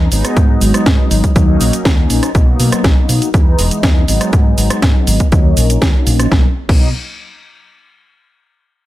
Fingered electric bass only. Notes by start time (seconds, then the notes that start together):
0.12 G#1
0.37 G#2
0.61 G#1
0.74 muted fingered electric bass stroke
0.86 G#2
1.11 G#1
1.36 D#2
1.60 A#1
1.85 D#2
2.10 A#1
2.35 B1
2.60 B2
2.72 muted fingered electric bass stroke
2.84 B1
3.09 B2
3.34 E2
3.59 E1
3.71 muted fingered electric bass stroke
3.83 E2
4.08 G#1
4.33 G#2
4.58 G#1
4.83 G#2
5.07 G#1
5.32 D#2
5.57 A#1
5.82 D#2
6.07 A#1
6.31 B1
6.69 B1